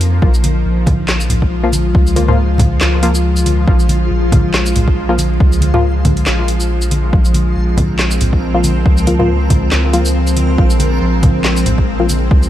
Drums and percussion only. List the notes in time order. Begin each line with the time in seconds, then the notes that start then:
0.01 closed hi-hat
0.22 kick
0.34 shaker
0.44 closed hi-hat, high conga
0.86 kick, closed hi-hat, high conga, low conga
1.08 snare, clap
1.20 shaker
1.29 closed hi-hat, low conga
1.42 kick
1.73 closed hi-hat, high conga, shaker
1.95 kick
2.07 shaker
2.16 closed hi-hat, high conga
2.28 low conga
2.58 kick, closed hi-hat, high conga, low conga
2.81 snare, clap
3.03 closed hi-hat
3.15 shaker
3.36 shaker
3.46 closed hi-hat, high conga
3.68 kick
3.80 shaker
3.88 closed hi-hat, high conga
4.32 kick, closed hi-hat, high conga, low conga
4.54 snare, clap
4.66 shaker
4.76 closed hi-hat, low conga
4.88 kick
5.18 closed hi-hat, high conga, shaker
5.40 kick
5.52 shaker
5.61 closed hi-hat, high conga
5.74 low conga
6.05 kick, closed hi-hat, high conga, low conga
6.17 closed hi-hat
6.27 snare, clap
6.48 closed hi-hat
6.60 shaker
6.82 shaker
6.91 closed hi-hat, high conga
7.13 kick
7.25 shaker
7.34 closed hi-hat, high conga
7.77 kick, closed hi-hat, high conga, low conga
7.99 snare, clap
8.11 shaker
8.21 closed hi-hat, low conga
8.33 kick
8.64 closed hi-hat, high conga, shaker
8.86 kick
8.97 shaker
9.07 closed hi-hat, high conga
9.20 low conga
9.50 kick, closed hi-hat, high conga, low conga
9.72 snare, clap
9.93 closed hi-hat
10.05 shaker
10.27 shaker
10.36 closed hi-hat, high conga
10.58 kick
10.70 shaker
10.80 closed hi-hat, high conga
11.23 kick, closed hi-hat, high conga, low conga
11.45 snare, clap
11.57 shaker
11.66 closed hi-hat, low conga
11.78 kick
12.09 closed hi-hat, high conga, shaker
12.31 kick
12.43 shaker